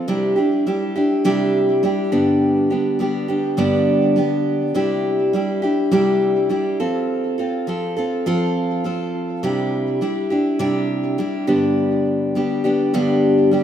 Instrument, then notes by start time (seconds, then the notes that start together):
steel-string acoustic guitar
0.08 C3 G3 D4 E4 G4
0.36 D4 E4 G4
0.67 G3 D4 E4 G4
0.95 D4 E4 G4
1.25 C3 G3 D4 E4 G4
1.83 G3 D4 E4 G4
2.12 G2 D3 G3 B3 D4 G4
2.70 G3 B3 D4 G4
2.99 G3 B3 D4 G4
3.28 G3 B3 D4 G4
3.57 G2 D3 G3 B3 D4 G4
4.16 G3 B3 D4 G4
4.74 C3 G3 D4 E4 G4
5.33 G3 D4 E4 G4
5.62 D4 E4 G4
5.91 C3 G3 D4 E4 G4
6.49 G3 D4 E4 G4
6.80 F3 C4 F4 A4
7.38 C4 F4 A4
7.67 F3 C4 F4 A4
7.97 C4 F4 A4
8.26 F3 C4 F4 A4
8.84 F3 C4 F4 A4
9.43 C3 G3 D4 E4 G4
10.01 G3 D4 E4 G4
10.30 D4 E4 G4
10.59 C3 G3 D4 E4 G4
11.18 G3 D4 E4 G4
11.47 G2 D3 G3 B3 D4 G4
12.35 G3 B3 D4 G4
12.64 G3 B3 D4 G4
12.94 G2 D3 G3 B3 D4 G4
13.51 G3 B3 D4 G4